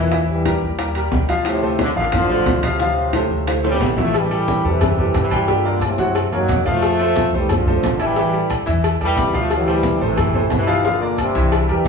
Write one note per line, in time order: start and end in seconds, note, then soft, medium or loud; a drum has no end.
0.00 0.57 E2 medium
0.00 0.27 A#2 medium
0.00 0.27 E3 medium
0.12 0.40 E3 medium
0.12 0.40 E4 medium
0.12 0.40 E5 medium
0.12 high bongo medium
0.12 high conga soft
0.12 high timbale medium
0.29 0.63 E3 medium
0.29 0.63 G3 medium
0.29 high bongo soft
0.29 high conga soft
0.45 0.73 G3 medium
0.45 0.73 G4 medium
0.45 0.73 A#4 medium
0.45 high bongo medium
0.45 high conga medium
0.45 high timbale loud
0.45 low timbale medium
0.62 1.09 D#2 medium
0.62 high bongo soft
0.62 high conga soft
0.79 0.93 G3 medium
0.79 0.93 G4 medium
0.79 0.93 A#4 medium
0.79 high bongo medium
0.79 high conga soft
0.79 high timbale loud
0.95 1.23 G3 medium
0.95 1.23 G4 medium
0.95 1.24 A#4 medium
0.95 high conga soft
0.95 high timbale medium
1.12 1.91 D2 medium
1.12 high bongo soft
1.12 low bongo medium
1.12 high conga medium
1.12 low timbale medium
1.29 1.57 F3 medium
1.29 1.57 F4 medium
1.29 1.57 F5 medium
1.29 high timbale medium
1.45 1.78 A2 medium
1.45 1.77 C3 medium
1.45 high bongo medium
1.45 high conga soft
1.45 high timbale medium
1.62 1.90 A3 medium
1.62 1.90 A4 medium
1.62 1.91 C5 medium
1.62 high bongo soft
1.62 high conga soft
1.79 1.88 A2 medium
1.79 1.88 D3 loud
1.79 high bongo medium
1.79 high conga loud
1.79 high timbale medium
1.79 low timbale medium
1.96 2.43 A1 medium
1.96 2.06 A#2 medium
1.96 2.05 D3 medium
1.96 2.24 F3 medium
1.96 2.24 F4 medium
1.96 2.24 F5 medium
1.96 high bongo soft
1.96 high conga soft
2.12 2.61 D3 medium
2.12 2.61 F3 loud
2.12 high bongo medium
2.12 high conga soft
2.12 low conga medium
2.12 high timbale loud
2.29 2.57 A3 medium
2.29 2.57 A4 medium
2.29 2.57 C5 medium
2.29 high conga soft
2.46 3.25 D2 medium
2.46 high bongo soft
2.46 low bongo medium
2.46 high conga medium
2.46 high timbale medium
2.46 low timbale medium
2.63 3.82 A2 medium
2.63 3.82 C3 medium
2.63 2.77 F3 medium
2.63 2.78 F4 medium
2.63 2.78 F5 medium
2.63 high conga medium
2.63 high timbale loud
2.80 3.08 F3 medium
2.80 3.08 F4 medium
2.80 3.09 F5 medium
2.80 high bongo medium
2.80 high conga soft
2.80 high timbale medium
2.97 high bongo soft
2.97 high conga soft
3.13 3.42 A3 medium
3.13 3.42 A4 medium
3.13 3.42 C5 medium
3.13 high bongo medium
3.13 high conga medium
3.13 high timbale loud
3.13 low timbale medium
3.30 3.77 D2 medium
3.30 high bongo soft
3.30 high conga soft
3.47 3.61 A3 medium
3.47 3.61 A4 medium
3.47 3.62 C5 medium
3.47 high bongo medium
3.47 high conga soft
3.47 high timbale medium
3.64 3.97 E3 medium
3.64 3.97 G3 loud
3.64 3.91 A3 medium
3.64 3.92 A4 medium
3.64 3.92 C5 medium
3.64 high bongo medium
3.64 high conga soft
3.64 high timbale medium
3.75 low bongo medium
3.80 4.59 A1 medium
3.80 high conga medium
3.80 low timbale loud
3.86 low bongo medium
3.97 4.11 E3 medium
3.97 4.16 F3 medium
3.97 4.11 E4 medium
3.97 4.12 E5 medium
3.97 low bongo medium
3.97 high conga medium
3.97 low timbale medium
4.01 4.16 A3 loud
4.14 4.66 E3 medium
4.14 4.66 G3 loud
4.14 cowbell loud
4.14 high conga soft
4.14 low agogo loud
4.31 4.58 G3 medium
4.31 4.59 G4 medium
4.31 4.59 A4 medium
4.31 high conga soft
4.31 low agogo medium
4.48 cowbell medium
4.48 high conga loud
4.48 low timbale medium
4.64 5.11 E2 medium
4.64 5.16 C3 medium
4.64 5.16 E3 medium
4.64 4.92 G3 medium
4.64 4.92 G4 medium
4.64 4.92 A4 medium
4.64 high conga soft
4.81 cowbell loud
4.81 high conga soft
4.81 low conga medium
4.81 low agogo loud
4.98 5.26 G3 medium
4.98 5.26 G4 medium
4.98 5.26 A4 medium
4.98 high conga soft
4.98 low conga medium
5.14 5.93 G2 medium
5.14 5.47 C3 medium
5.14 5.48 E3 medium
5.14 cowbell medium
5.14 high conga medium
5.14 low timbale medium
5.14 low agogo medium
5.31 5.46 G3 medium
5.31 5.46 G4 medium
5.31 5.46 G5 medium
5.31 high conga medium
5.31 low agogo loud
5.48 5.83 A#2 medium
5.48 5.83 D3 loud
5.48 5.62 G3 medium
5.48 5.62 G4 medium
5.48 5.63 G5 medium
5.48 cowbell loud
5.48 high conga soft
5.64 5.92 A#3 medium
5.64 5.93 A#4 medium
5.64 5.93 D5 medium
5.64 high conga soft
5.80 cowbell medium
5.80 high conga medium
5.80 low timbale medium
5.80 low agogo loud
5.85 6.18 A2 medium
5.85 6.34 C3 loud
5.98 6.30 F#2 loud
5.98 6.26 F#3 medium
5.98 6.26 F#4 medium
5.98 6.27 F#5 medium
5.98 cowbell medium
5.98 high conga soft
6.15 cowbell loud
6.15 high conga soft
6.15 low agogo loud
6.32 6.48 F#2 medium
6.32 6.67 D#3 medium
6.32 6.67 F#3 loud
6.32 6.60 A#3 medium
6.32 6.60 A#4 medium
6.32 6.60 C#5 medium
6.32 high conga soft
6.32 low agogo medium
6.49 7.28 F2 medium
6.49 cowbell medium
6.49 high conga medium
6.49 low timbale medium
6.66 6.94 F3 medium
6.66 7.34 A3 loud
6.66 6.94 F4 medium
6.66 6.94 F5 medium
6.66 high conga medium
6.66 low agogo medium
6.70 7.35 F3 medium
6.82 cowbell loud
6.82 high conga soft
6.82 low agogo loud
7.00 7.28 A3 medium
7.00 7.28 A4 medium
7.00 7.28 C5 medium
7.00 high conga soft
7.00 low agogo medium
7.16 cowbell medium
7.16 high conga loud
7.16 low timbale medium
7.33 7.80 C2 medium
7.33 7.51 E3 medium
7.33 7.50 G3 medium
7.33 7.61 A3 medium
7.33 7.61 A4 medium
7.33 7.62 C5 medium
7.33 high conga soft
7.49 8.01 D3 medium
7.49 8.01 F3 loud
7.49 cowbell loud
7.49 high conga soft
7.49 low conga medium
7.49 low agogo loud
7.67 7.94 A3 medium
7.67 7.95 A4 medium
7.67 7.95 C5 medium
7.67 high conga soft
7.67 low conga medium
7.83 8.62 A1 medium
7.83 cowbell medium
7.83 high conga medium
7.83 low timbale medium
7.83 low agogo medium
8.00 8.14 E3 medium
8.00 8.51 E3 medium
8.00 8.51 G3 loud
8.00 8.14 E4 medium
8.00 8.14 E5 medium
8.00 low agogo loud
8.16 8.31 E3 medium
8.16 8.31 E4 medium
8.16 8.31 E5 medium
8.16 cowbell loud
8.16 high conga soft
8.33 8.61 G3 medium
8.33 8.61 G4 medium
8.33 8.61 A4 medium
8.33 high conga soft
8.50 cowbell medium
8.50 high conga medium
8.50 low timbale medium
8.50 low agogo loud
8.66 8.99 E2 medium
8.66 8.94 E3 medium
8.66 8.94 E4 medium
8.66 8.94 E5 medium
8.66 cowbell medium
8.66 high conga soft
8.84 cowbell loud
8.84 high conga soft
8.84 low agogo loud
9.00 9.17 E2 medium
9.00 9.33 E3 medium
9.00 9.28 G3 medium
9.00 9.34 G3 loud
9.00 9.29 G4 medium
9.00 9.29 A4 medium
9.00 high conga soft
9.00 low agogo medium
9.17 9.96 D2 medium
9.17 cowbell medium
9.17 high conga medium
9.17 low timbale medium
9.33 9.61 F3 medium
9.33 9.51 F3 medium
9.33 9.62 F4 medium
9.33 9.62 F5 medium
9.33 high conga medium
9.33 low agogo medium
9.38 9.52 A3 loud
9.50 9.99 E3 medium
9.50 cowbell loud
9.50 high conga soft
9.50 low agogo loud
9.54 10.00 G3 loud
9.67 9.95 A3 medium
9.67 9.95 A4 medium
9.67 9.96 C5 medium
9.67 high conga soft
9.67 low agogo medium
9.83 cowbell medium
9.83 high conga loud
9.83 low timbale medium
10.01 10.48 A1 medium
10.01 10.49 C3 medium
10.01 10.50 E3 loud
10.01 10.29 A3 medium
10.01 10.29 A4 medium
10.01 10.29 C5 medium
10.01 high conga soft
10.17 cowbell loud
10.17 high conga soft
10.17 low conga loud
10.17 low agogo loud
10.34 10.62 A3 medium
10.34 10.62 A4 medium
10.34 10.62 C5 medium
10.34 high conga soft
10.34 low conga medium
10.50 11.30 G1 medium
10.50 10.84 C3 medium
10.50 10.84 E3 loud
10.50 cowbell medium
10.50 high conga medium
10.50 low timbale medium
10.50 low agogo medium
10.67 10.82 F3 medium
10.67 10.82 F4 medium
10.67 10.82 F5 medium
10.67 low agogo loud
10.84 11.20 A#2 medium
10.84 11.19 D3 medium
10.84 10.98 F3 medium
10.84 10.99 F4 medium
10.84 10.99 F5 medium
10.84 cowbell loud
10.84 high conga soft
11.01 11.29 A#3 medium
11.01 11.29 A#4 medium
11.01 11.30 D5 medium
11.01 high conga soft
11.18 11.66 G2 medium
11.18 11.66 C3 loud
11.18 cowbell medium
11.18 high conga medium
11.18 low timbale medium
11.18 low agogo loud
11.35 11.67 C2 medium
11.35 11.63 E3 loud
11.35 11.63 E4 medium
11.35 11.63 E5 loud
11.35 cowbell medium
11.35 high conga soft
11.52 cowbell loud
11.52 high conga soft
11.52 low agogo loud
11.68 11.85 E2 medium
11.68 11.88 E3 medium
11.68 11.88 G3 medium
11.68 11.88 G3 loud
11.68 11.88 G4 medium
11.68 11.88 A#4 medium
11.68 high conga soft
11.68 low agogo medium
11.85 high conga medium